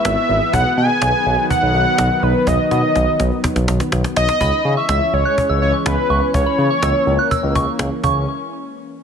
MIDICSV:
0, 0, Header, 1, 6, 480
1, 0, Start_track
1, 0, Tempo, 483871
1, 531, Time_signature, 4, 2, 24, 8
1, 8959, End_track
2, 0, Start_track
2, 0, Title_t, "Synth bell"
2, 0, Program_c, 0, 98
2, 4369, Note_on_c, 0, 83, 92
2, 4513, Note_off_c, 0, 83, 0
2, 4731, Note_on_c, 0, 85, 74
2, 4803, Note_off_c, 0, 85, 0
2, 4850, Note_on_c, 0, 88, 88
2, 4922, Note_off_c, 0, 88, 0
2, 5212, Note_on_c, 0, 90, 73
2, 5283, Note_off_c, 0, 90, 0
2, 5450, Note_on_c, 0, 88, 77
2, 5522, Note_off_c, 0, 88, 0
2, 5690, Note_on_c, 0, 85, 77
2, 5762, Note_off_c, 0, 85, 0
2, 6052, Note_on_c, 0, 85, 80
2, 6123, Note_off_c, 0, 85, 0
2, 6411, Note_on_c, 0, 83, 78
2, 6483, Note_off_c, 0, 83, 0
2, 6651, Note_on_c, 0, 85, 83
2, 6722, Note_off_c, 0, 85, 0
2, 6768, Note_on_c, 0, 88, 75
2, 6840, Note_off_c, 0, 88, 0
2, 7130, Note_on_c, 0, 90, 77
2, 7202, Note_off_c, 0, 90, 0
2, 7252, Note_on_c, 0, 88, 91
2, 7395, Note_off_c, 0, 88, 0
2, 7493, Note_on_c, 0, 85, 81
2, 7564, Note_off_c, 0, 85, 0
2, 7973, Note_on_c, 0, 85, 87
2, 8195, Note_off_c, 0, 85, 0
2, 8959, End_track
3, 0, Start_track
3, 0, Title_t, "Analog synth lead"
3, 0, Program_c, 1, 81
3, 46, Note_on_c, 1, 76, 110
3, 527, Note_on_c, 1, 78, 121
3, 542, Note_off_c, 1, 76, 0
3, 764, Note_off_c, 1, 78, 0
3, 770, Note_on_c, 1, 80, 118
3, 1451, Note_off_c, 1, 80, 0
3, 1491, Note_on_c, 1, 78, 119
3, 2212, Note_on_c, 1, 71, 96
3, 2227, Note_off_c, 1, 78, 0
3, 2454, Note_on_c, 1, 75, 104
3, 2469, Note_off_c, 1, 71, 0
3, 2689, Note_off_c, 1, 75, 0
3, 2695, Note_on_c, 1, 75, 93
3, 3373, Note_off_c, 1, 75, 0
3, 4135, Note_on_c, 1, 75, 116
3, 4693, Note_off_c, 1, 75, 0
3, 4734, Note_on_c, 1, 76, 108
3, 5095, Note_on_c, 1, 73, 109
3, 5110, Note_off_c, 1, 76, 0
3, 5567, Note_off_c, 1, 73, 0
3, 5573, Note_on_c, 1, 73, 101
3, 5681, Note_off_c, 1, 73, 0
3, 5815, Note_on_c, 1, 71, 98
3, 6259, Note_off_c, 1, 71, 0
3, 6295, Note_on_c, 1, 73, 108
3, 7693, Note_off_c, 1, 73, 0
3, 8959, End_track
4, 0, Start_track
4, 0, Title_t, "Analog synth pad"
4, 0, Program_c, 2, 89
4, 0, Note_on_c, 2, 52, 79
4, 0, Note_on_c, 2, 56, 75
4, 0, Note_on_c, 2, 59, 88
4, 492, Note_off_c, 2, 52, 0
4, 492, Note_off_c, 2, 56, 0
4, 528, Note_on_c, 2, 51, 77
4, 528, Note_on_c, 2, 54, 74
4, 4331, Note_off_c, 2, 51, 0
4, 4331, Note_off_c, 2, 54, 0
4, 4331, Note_off_c, 2, 59, 0
4, 4371, Note_on_c, 2, 52, 76
4, 4371, Note_on_c, 2, 56, 73
4, 4371, Note_on_c, 2, 61, 85
4, 6271, Note_off_c, 2, 56, 0
4, 6293, Note_on_c, 2, 58, 71
4, 7935, Note_off_c, 2, 52, 0
4, 7935, Note_off_c, 2, 61, 0
4, 7955, Note_off_c, 2, 58, 0
4, 8959, End_track
5, 0, Start_track
5, 0, Title_t, "Analog synth bass"
5, 0, Program_c, 3, 38
5, 50, Note_on_c, 3, 32, 103
5, 156, Note_off_c, 3, 32, 0
5, 290, Note_on_c, 3, 32, 99
5, 397, Note_off_c, 3, 32, 0
5, 531, Note_on_c, 3, 35, 112
5, 637, Note_off_c, 3, 35, 0
5, 769, Note_on_c, 3, 47, 99
5, 876, Note_off_c, 3, 47, 0
5, 1009, Note_on_c, 3, 35, 97
5, 1116, Note_off_c, 3, 35, 0
5, 1250, Note_on_c, 3, 35, 101
5, 1356, Note_off_c, 3, 35, 0
5, 1611, Note_on_c, 3, 35, 99
5, 1717, Note_off_c, 3, 35, 0
5, 1731, Note_on_c, 3, 35, 114
5, 1837, Note_off_c, 3, 35, 0
5, 1970, Note_on_c, 3, 35, 100
5, 2076, Note_off_c, 3, 35, 0
5, 2208, Note_on_c, 3, 35, 108
5, 2316, Note_off_c, 3, 35, 0
5, 2450, Note_on_c, 3, 35, 107
5, 2556, Note_off_c, 3, 35, 0
5, 2692, Note_on_c, 3, 47, 95
5, 2797, Note_off_c, 3, 47, 0
5, 2931, Note_on_c, 3, 35, 106
5, 3037, Note_off_c, 3, 35, 0
5, 3171, Note_on_c, 3, 35, 102
5, 3277, Note_off_c, 3, 35, 0
5, 3531, Note_on_c, 3, 35, 100
5, 3637, Note_off_c, 3, 35, 0
5, 3650, Note_on_c, 3, 35, 103
5, 3757, Note_off_c, 3, 35, 0
5, 3891, Note_on_c, 3, 35, 104
5, 3997, Note_off_c, 3, 35, 0
5, 4130, Note_on_c, 3, 35, 96
5, 4237, Note_off_c, 3, 35, 0
5, 4371, Note_on_c, 3, 37, 106
5, 4477, Note_off_c, 3, 37, 0
5, 4611, Note_on_c, 3, 49, 99
5, 4717, Note_off_c, 3, 49, 0
5, 4851, Note_on_c, 3, 37, 102
5, 4957, Note_off_c, 3, 37, 0
5, 5091, Note_on_c, 3, 37, 99
5, 5197, Note_off_c, 3, 37, 0
5, 5451, Note_on_c, 3, 37, 93
5, 5557, Note_off_c, 3, 37, 0
5, 5571, Note_on_c, 3, 37, 94
5, 5677, Note_off_c, 3, 37, 0
5, 5811, Note_on_c, 3, 37, 106
5, 5917, Note_off_c, 3, 37, 0
5, 6050, Note_on_c, 3, 37, 106
5, 6156, Note_off_c, 3, 37, 0
5, 6292, Note_on_c, 3, 37, 109
5, 6397, Note_off_c, 3, 37, 0
5, 6530, Note_on_c, 3, 49, 97
5, 6636, Note_off_c, 3, 49, 0
5, 6771, Note_on_c, 3, 37, 96
5, 6877, Note_off_c, 3, 37, 0
5, 7011, Note_on_c, 3, 37, 105
5, 7117, Note_off_c, 3, 37, 0
5, 7372, Note_on_c, 3, 37, 97
5, 7478, Note_off_c, 3, 37, 0
5, 7494, Note_on_c, 3, 37, 98
5, 7599, Note_off_c, 3, 37, 0
5, 7732, Note_on_c, 3, 37, 106
5, 7837, Note_off_c, 3, 37, 0
5, 7971, Note_on_c, 3, 37, 100
5, 8194, Note_off_c, 3, 37, 0
5, 8959, End_track
6, 0, Start_track
6, 0, Title_t, "Cajon"
6, 49, Note_on_c, 9, 38, 125
6, 148, Note_off_c, 9, 38, 0
6, 293, Note_on_c, 9, 38, 46
6, 392, Note_off_c, 9, 38, 0
6, 410, Note_on_c, 9, 38, 31
6, 509, Note_off_c, 9, 38, 0
6, 530, Note_on_c, 9, 36, 109
6, 629, Note_off_c, 9, 36, 0
6, 774, Note_on_c, 9, 38, 44
6, 873, Note_off_c, 9, 38, 0
6, 889, Note_on_c, 9, 38, 30
6, 988, Note_off_c, 9, 38, 0
6, 1008, Note_on_c, 9, 38, 105
6, 1107, Note_off_c, 9, 38, 0
6, 1248, Note_on_c, 9, 38, 46
6, 1347, Note_off_c, 9, 38, 0
6, 1369, Note_on_c, 9, 38, 28
6, 1468, Note_off_c, 9, 38, 0
6, 1493, Note_on_c, 9, 36, 95
6, 1592, Note_off_c, 9, 36, 0
6, 1731, Note_on_c, 9, 38, 40
6, 1830, Note_off_c, 9, 38, 0
6, 1850, Note_on_c, 9, 38, 27
6, 1949, Note_off_c, 9, 38, 0
6, 1968, Note_on_c, 9, 38, 127
6, 2068, Note_off_c, 9, 38, 0
6, 2211, Note_on_c, 9, 38, 44
6, 2310, Note_off_c, 9, 38, 0
6, 2329, Note_on_c, 9, 38, 30
6, 2428, Note_off_c, 9, 38, 0
6, 2449, Note_on_c, 9, 38, 66
6, 2450, Note_on_c, 9, 36, 106
6, 2548, Note_off_c, 9, 38, 0
6, 2549, Note_off_c, 9, 36, 0
6, 2691, Note_on_c, 9, 38, 74
6, 2790, Note_off_c, 9, 38, 0
6, 2931, Note_on_c, 9, 38, 76
6, 3030, Note_off_c, 9, 38, 0
6, 3170, Note_on_c, 9, 38, 82
6, 3269, Note_off_c, 9, 38, 0
6, 3290, Note_on_c, 9, 38, 29
6, 3389, Note_off_c, 9, 38, 0
6, 3410, Note_on_c, 9, 38, 90
6, 3413, Note_on_c, 9, 36, 91
6, 3510, Note_off_c, 9, 38, 0
6, 3513, Note_off_c, 9, 36, 0
6, 3531, Note_on_c, 9, 38, 84
6, 3630, Note_off_c, 9, 38, 0
6, 3651, Note_on_c, 9, 38, 105
6, 3750, Note_off_c, 9, 38, 0
6, 3770, Note_on_c, 9, 38, 88
6, 3869, Note_off_c, 9, 38, 0
6, 3890, Note_on_c, 9, 38, 107
6, 3990, Note_off_c, 9, 38, 0
6, 4011, Note_on_c, 9, 38, 93
6, 4111, Note_off_c, 9, 38, 0
6, 4131, Note_on_c, 9, 38, 109
6, 4230, Note_off_c, 9, 38, 0
6, 4252, Note_on_c, 9, 38, 101
6, 4351, Note_off_c, 9, 38, 0
6, 4371, Note_on_c, 9, 36, 103
6, 4471, Note_off_c, 9, 36, 0
6, 4614, Note_on_c, 9, 38, 41
6, 4714, Note_off_c, 9, 38, 0
6, 4731, Note_on_c, 9, 38, 30
6, 4830, Note_off_c, 9, 38, 0
6, 4849, Note_on_c, 9, 38, 104
6, 4948, Note_off_c, 9, 38, 0
6, 5091, Note_on_c, 9, 38, 45
6, 5190, Note_off_c, 9, 38, 0
6, 5212, Note_on_c, 9, 38, 26
6, 5311, Note_off_c, 9, 38, 0
6, 5335, Note_on_c, 9, 36, 91
6, 5434, Note_off_c, 9, 36, 0
6, 5573, Note_on_c, 9, 38, 37
6, 5672, Note_off_c, 9, 38, 0
6, 5693, Note_on_c, 9, 38, 25
6, 5792, Note_off_c, 9, 38, 0
6, 5811, Note_on_c, 9, 38, 124
6, 5910, Note_off_c, 9, 38, 0
6, 6055, Note_on_c, 9, 38, 46
6, 6154, Note_off_c, 9, 38, 0
6, 6173, Note_on_c, 9, 38, 29
6, 6272, Note_off_c, 9, 38, 0
6, 6292, Note_on_c, 9, 36, 108
6, 6391, Note_off_c, 9, 36, 0
6, 6534, Note_on_c, 9, 38, 42
6, 6633, Note_off_c, 9, 38, 0
6, 6651, Note_on_c, 9, 38, 30
6, 6750, Note_off_c, 9, 38, 0
6, 6771, Note_on_c, 9, 38, 109
6, 6870, Note_off_c, 9, 38, 0
6, 7013, Note_on_c, 9, 38, 46
6, 7112, Note_off_c, 9, 38, 0
6, 7131, Note_on_c, 9, 38, 28
6, 7230, Note_off_c, 9, 38, 0
6, 7254, Note_on_c, 9, 36, 93
6, 7353, Note_off_c, 9, 36, 0
6, 7494, Note_on_c, 9, 36, 101
6, 7593, Note_off_c, 9, 36, 0
6, 7612, Note_on_c, 9, 38, 26
6, 7711, Note_off_c, 9, 38, 0
6, 7730, Note_on_c, 9, 38, 120
6, 7829, Note_off_c, 9, 38, 0
6, 7971, Note_on_c, 9, 36, 105
6, 8071, Note_off_c, 9, 36, 0
6, 8959, End_track
0, 0, End_of_file